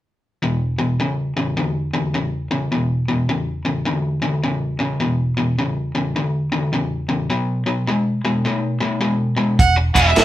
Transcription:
0.43 E2 B2
0.78 E2 B2
1.00 E2 C#3
1.37 E2 C#3
1.57 E2 D3
1.93 E2 D3
2.14 E2 C#3
2.51 E2 C#3
2.72 E2 B2
3.08 E2 B2
3.29 E2 C#3
3.65 E2 C#3
3.85 E2 D3
4.22 E2 D3
4.44 E2 C#3
4.79 E2 C#3
5.00 E2 B2
5.37 E2 B2
5.59 E2 C#3
5.95 E2 C#3
6.16 E2 D3
6.52 E2 D3
6.73 E2 C#3
7.09 E2 C#3
7.30 B2 F#3
7.66 B2 F#3
7.87 B2 G#3
8.25 B2 G#3
8.45 B2 A3
8.80 B2 A3
9.01 B2 G#3
9.37 B2 G#3
9.59 E1 F#5, kick, closed hi-hat
9.77 muted overdriven electric guitar stroke
9.94 E1 E3 G#3 D4 F#4 E5, kick, closed hi-hat
10.16 G#1, muted overdriven electric guitar stroke, snare, closed hi-hat

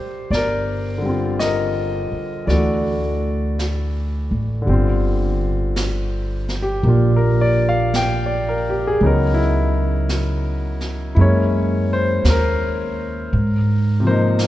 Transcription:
Already playing: D3 G3 C4 F4 G4 C5
0.30 G1 D5, brush sweep, snare
0.35 A#4
0.98 D3
1.02 G3 C4
1.09 F4
1.39 A#4 D#5, brush sweep, snare, hi-hat pedal
2.12 muted upright bass stroke
2.46 D2 E3 A3 D4 D5, brush sweep, snare
2.50 F#4 A4
3.59 brush sweep, snare, hi-hat pedal
4.31 A1
4.62 D3
4.66 G1 G3 C4, brush sweep
4.73 F4
5.76 brush sweep, snare, hi-hat pedal
6.49 snare
6.62 G4
6.83 A#1 A#3 D4, brush sweep
6.88 F4 G4
7.16 A#4
7.41 D5
7.69 F5
7.94 G5, brush sweep, snare, hi-hat pedal
8.26 D5
8.49 A#4
8.70 G4
8.87 G#4
9.01 C#2 C#3 F#3 B3 D#4, brush sweep
9.06 A#4
9.34 E4
10.09 brush sweep, snare, hi-hat pedal
10.81 snare
11.15 F#2 G#3 A#3 E4, brush sweep
11.20 C#4 C#5
11.93 C5
12.24 D#2, brush sweep, snare, hi-hat pedal
12.30 A#4
13.32 G#2, brush sweep
14.00 C3 F3
14.07 A#3 D#4 C5
14.39 brush sweep, snare, hi-hat pedal

